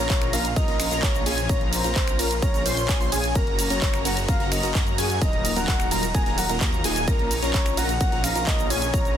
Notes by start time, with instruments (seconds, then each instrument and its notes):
Already playing: string section C#3 F3 A#3 F4
0.00 soft synth lead C#5
0.10 detuned saw bass A#1, supersaw synth C#4 F4 A#4, analog synth lead A#5, kick, clap, closed hi-hat, cabasa
0.22 finger snap, closed hi-hat, cabasa
0.33 detuned saw bass A#1, supersaw synth C#4 F4 A#4, soft synth lead F5, analog synth lead A#5, open hi-hat, ride, cabasa
0.45 closed hi-hat, cabasa
0.56 detuned saw bass A#1, supersaw synth C#4 F4 A#4, soft synth lead D#5, analog synth lead A#5, kick, closed hi-hat, ride, cabasa
0.68 detuned saw bass A#1, supersaw synth C#4 F4 A#4, analog synth lead A#5, closed hi-hat
0.80 finger snap, open hi-hat, ride, cabasa
0.91 detuned saw bass A#1, supersaw synth C#4 F4 A#4, analog synth lead A#5, closed hi-hat, cabasa
1.03 detuned saw bass A#1, supersaw synth C#4 F4 A#4, soft synth lead C#5, analog synth lead A#5, kick, clap, closed hi-hat, cabasa
1.15 closed hi-hat, cabasa
1.26 detuned saw bass A#1, supersaw synth C#4 F4 G#4, analog synth lead G#5, open hi-hat, ride, cabasa
1.38 closed hi-hat, cabasa
1.49 detuned saw bass A#1, supersaw synth C#4 F4 A#4, soft synth lead C#5, analog synth lead A#5, kick, closed hi-hat, ride, cabasa
1.61 closed hi-hat
1.73 soft synth lead C5, open hi-hat, ride, cabasa
1.84 detuned saw bass A#1, supersaw synth C#4 F4 A#4, analog synth lead A#5, closed hi-hat, cabasa
1.96 detuned saw bass A#1, supersaw synth C#4 A#4, analog synth lead A#5, kick, clap, closed hi-hat, ride, cabasa
2.08 finger snap, closed hi-hat, cabasa
2.19 detuned saw bass A#1, supersaw synth C#4 F4 A#4, soft synth lead A#4, analog synth lead A#5, open hi-hat, ride, cabasa
2.31 closed hi-hat, cabasa
2.42 detuned saw bass A#1, supersaw synth C#4 F4 A#4, soft synth lead C#5, analog synth lead A#5, kick, closed hi-hat, ride, cabasa
2.54 detuned saw bass A#1, supersaw synth C#4 F4 A#4, analog synth lead A#5, closed hi-hat, cabasa
2.66 detuned saw bass A#1, supersaw synth C#4 F4 C5, analog synth lead C6, open hi-hat, ride, cabasa
2.77 closed hi-hat, cabasa
2.89 detuned saw bass A#1, supersaw synth C#4 G#4, analog synth lead G#5, kick, clap, closed hi-hat, ride, cabasa
3.01 detuned saw bass A#1, supersaw synth C#4 F4 C5, analog synth lead C6, closed hi-hat, cabasa
3.12 detuned saw bass A#1, supersaw synth C#4 F4 G#4, analog synth lead G#5, open hi-hat, ride, cabasa
3.24 closed hi-hat, cabasa
3.35 detuned saw bass F#1, string section C#3 F#3 F#4, supersaw synth C#4 F#4 A#4, soft synth lead A#4, analog synth lead A#5, kick, closed hi-hat, ride, cabasa
3.47 closed hi-hat
3.59 open hi-hat, ride, cabasa
3.70 detuned saw bass F#1, supersaw synth C#4 F#4 A#4, soft synth lead C#5, analog synth lead A#5, closed hi-hat, cabasa
3.82 detuned saw bass F#1, analog synth lead A#5, kick, clap, closed hi-hat, ride, cabasa
3.94 finger snap, closed hi-hat, cabasa
4.05 detuned saw bass F#1, supersaw synth C#4 F#4 A#4, soft synth lead F#5, analog synth lead A#5, open hi-hat, ride, cabasa
4.17 closed hi-hat, cabasa
4.28 detuned saw bass F#1, supersaw synth C#4 F#4 A#4, soft synth lead F5, analog synth lead A#5, kick, closed hi-hat, ride, cabasa
4.40 detuned saw bass F#1, supersaw synth C#4 F#4 A#4, analog synth lead A#5, closed hi-hat
4.52 soft synth lead D#5, finger snap, open hi-hat, ride, cabasa
4.63 detuned saw bass F#1, supersaw synth C#4 F#4 A#4, analog synth lead A#5, closed hi-hat, cabasa
4.75 detuned saw bass F#2, supersaw synth F#4, analog synth lead A#5, kick, clap, closed hi-hat, ride, cabasa
4.87 closed hi-hat, cabasa
4.98 detuned saw bass F#2, supersaw synth C#4 F#4 G#4, analog synth lead G#5, open hi-hat, ride, cabasa
5.10 closed hi-hat, cabasa
5.21 detuned saw bass D#1, string section D#3 F#3 D#4, supersaw synth F#3 A#3 D#4 F4 A#4, soft synth lead D#5, analog synth lead A#5, kick, closed hi-hat, ride, cabasa
5.33 closed hi-hat
5.45 open hi-hat, ride, cabasa
5.56 detuned saw bass D#1, supersaw synth F#3 A#3 D#4 F4 A#4, soft synth lead F#5, analog synth lead A#5, closed hi-hat, cabasa
5.68 detuned saw bass D#1, kick, clap, closed hi-hat, ride, cabasa
5.80 finger snap, closed hi-hat, cabasa
5.91 detuned saw bass D#1, supersaw synth F#3 A#3 D#4 F4 A#4, analog synth lead A#5, soft synth lead A#5, open hi-hat, ride, cabasa
6.03 closed hi-hat, cabasa
6.14 detuned saw bass D#1, supersaw synth F#3 A#3 D#4 F4 A#4, soft synth lead G#5, analog synth lead A#5, kick, closed hi-hat, ride, cabasa
6.26 detuned saw bass D#1, supersaw synth F#3 A#3 D#4 F4 A#4, analog synth lead A#5, closed hi-hat
6.38 soft synth lead F#5, open hi-hat, ride, cabasa
6.49 detuned saw bass D#1, supersaw synth F#3 A#3 D#4 F4 A#4, analog synth lead A#5, closed hi-hat, cabasa
6.61 detuned saw bass D#2, supersaw synth F#3, analog synth lead A#5, kick, clap, closed hi-hat, ride, cabasa
6.73 closed hi-hat, cabasa
6.84 detuned saw bass D#1, supersaw synth F#3 A#3 D#4 F4 G#4, analog synth lead G#5, open hi-hat, ride, cabasa
6.96 closed hi-hat, cabasa
7.08 detuned saw bass A#1, string section C#3 F3, supersaw synth C#4 F4 A#4, soft synth lead A#4, analog synth lead A#5, kick, closed hi-hat, ride, cabasa
7.19 closed hi-hat
7.31 open hi-hat, ride, cabasa
7.42 detuned saw bass A#1, supersaw synth C#4 F4 A#4, soft synth lead C#5, analog synth lead A#5, closed hi-hat, cabasa
7.54 detuned saw bass A#1, supersaw synth F4, analog synth lead A#5, kick, clap, closed hi-hat, ride, cabasa
7.66 finger snap, closed hi-hat, cabasa
7.77 detuned saw bass A#1, supersaw synth C#4 F4 A#4, soft synth lead F#5, analog synth lead A#5, open hi-hat, ride, cabasa
7.89 closed hi-hat, cabasa
8.01 detuned saw bass A#1, supersaw synth C#4 F4 A#4, analog synth lead A#5, kick, closed hi-hat, ride, cabasa
8.12 detuned saw bass A#1, supersaw synth C#4 F4 A#4, analog synth lead A#5, closed hi-hat
8.24 soft synth lead F5, finger snap, open hi-hat, ride, cabasa
8.35 detuned saw bass A#1, supersaw synth C#4 F4 A#4, analog synth lead A#5, closed hi-hat, cabasa
8.47 detuned saw bass A#1, supersaw synth F4, soft synth lead D#5, analog synth lead A#5, kick, clap, closed hi-hat, ride, cabasa
8.59 closed hi-hat, cabasa
8.70 detuned saw bass A#1, supersaw synth C#4 F4 G#4, soft synth lead C#5, analog synth lead G#5, open hi-hat, ride, cabasa
8.82 closed hi-hat, cabasa
8.94 detuned saw bass A#1, supersaw synth C#4 F4 A#4, analog synth lead A#5, kick, closed hi-hat, ride, cabasa
9.05 closed hi-hat, cabasa